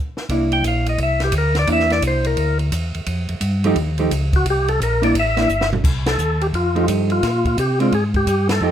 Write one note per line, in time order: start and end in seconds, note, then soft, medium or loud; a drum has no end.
0.17 snare soft
0.29 0.63 C2 medium
0.29 1.26 A#3 medium
0.29 1.26 D4 medium
0.29 1.27 E4 medium
0.29 kick soft
0.29 ride medium
0.52 0.64 G5 loud
0.52 ride soft
0.64 0.98 A#1 loud
0.64 0.87 F5 medium
0.64 kick soft
0.64 hi-hat pedal medium
0.64 ride medium
0.86 1.00 D#5 medium
0.86 ride medium
0.98 1.32 C2 medium
0.98 kick soft
0.98 ride medium
1.03 1.22 E5 loud
1.20 1.35 G4 medium
1.20 snare soft
1.20 ride soft
1.32 1.66 D2 medium
1.32 kick soft
1.32 hi-hat pedal medium
1.32 ride medium
1.38 1.57 A#4 medium
1.55 1.69 D5 loud
1.55 snare soft
1.55 ride medium
1.67 2.01 E2 medium
1.67 2.64 A#3 medium
1.67 2.65 D4 medium
1.67 2.65 E4 medium
1.67 kick soft
1.67 ride medium
1.72 1.92 E5 loud
1.79 snare soft
1.90 2.04 D5 loud
1.90 snare soft
1.90 ride soft
2.02 2.36 C2 medium
2.02 kick soft
2.02 hi-hat pedal medium
2.02 ride medium
2.07 2.27 C5 medium
2.24 2.58 A#4 medium
2.24 ride medium
2.37 2.71 D2 medium
2.37 kick soft
2.37 ride medium
2.59 ride soft
2.72 2.93 E2 loud
2.72 kick soft
2.72 hi-hat pedal medium
2.72 ride medium
2.94 3.01 E2 soft
2.94 ride medium
3.06 3.27 F2 medium
3.06 kick soft
3.06 ride medium
3.29 3.35 F2 soft
3.29 ride medium
3.41 3.75 G2 loud
3.41 kick soft
3.41 hi-hat pedal medium
3.41 ride medium
3.64 3.75 F3 medium
3.64 3.76 A3 medium
3.64 3.76 D#4 medium
3.64 3.76 G4 medium
3.64 ride medium
3.76 4.10 D#2 medium
3.76 kick soft
3.76 ride medium
3.98 4.10 F3 medium
3.98 4.10 A3 medium
3.98 4.10 D#4 medium
3.98 4.10 G4 medium
3.98 ride soft
4.11 4.44 C#2 loud
4.11 kick soft
4.11 hi-hat pedal medium
4.11 ride medium
4.33 4.47 F#4 loud
4.33 kick medium
4.33 ride soft
4.46 4.79 C2 medium
4.46 kick soft
4.46 ride medium
4.50 4.69 G4 medium
4.68 4.80 A4 loud
4.68 ride soft
4.80 5.14 A#1 loud
4.80 5.03 A#4 medium
4.80 kick soft
4.80 hi-hat pedal medium
4.80 ride medium
5.02 5.13 A#3 medium
5.02 5.13 D4 medium
5.02 5.14 E4 medium
5.02 5.15 D5 loud
5.02 ride medium
5.15 5.48 A1 loud
5.15 kick soft
5.15 ride medium
5.20 5.70 E5 loud
5.37 5.48 A#3 medium
5.37 5.48 D4 medium
5.37 5.48 E4 medium
5.37 snare soft
5.37 ride soft
5.48 5.82 G1 medium
5.48 hi-hat pedal medium
5.61 snare medium
5.73 floor tom medium
5.84 6.18 C2 medium
5.84 kick medium
5.84 crash medium
6.06 6.43 A4 loud
6.06 snare medium
6.06 ride medium
6.18 6.52 D#2 medium
6.18 hi-hat pedal medium
6.41 6.47 G4 medium
6.41 ride soft
6.53 6.87 F2 medium
6.53 6.87 F4 medium
6.53 kick soft
6.53 ride medium
6.75 7.20 F3 medium
6.75 7.20 A3 medium
6.75 7.20 D#4 medium
6.75 7.21 G4 medium
6.75 ride soft
6.87 7.22 G2 medium
6.87 kick soft
6.87 hi-hat pedal medium
6.87 ride medium
7.10 7.46 F4 medium
7.10 ride soft
7.22 7.56 A#2 medium
7.22 kick soft
7.22 snare soft
7.22 ride medium
7.45 7.58 F4 medium
7.45 kick soft
7.45 ride soft
7.57 7.91 C3 medium
7.57 7.79 G4 medium
7.57 kick soft
7.57 hi-hat pedal medium
7.57 ride medium
7.80 7.91 G#3 medium
7.80 7.91 C4 medium
7.80 7.91 D4 medium
7.80 7.94 F4 medium
7.80 ride soft
7.92 8.26 G#2 medium
7.92 8.04 G#4 medium
7.92 kick soft
7.92 ride medium
8.14 8.48 G4 medium
8.14 kick medium
8.14 ride soft
8.27 8.61 G2 medium
8.27 kick soft
8.27 hi-hat pedal medium
8.27 ride medium
8.49 8.71 A4 medium
8.49 snare medium
8.49 ride medium
8.61 8.71 F2 medium
8.61 8.71 F3 medium
8.61 8.71 A3 medium
8.61 8.71 D#4 medium
8.61 8.71 G4 medium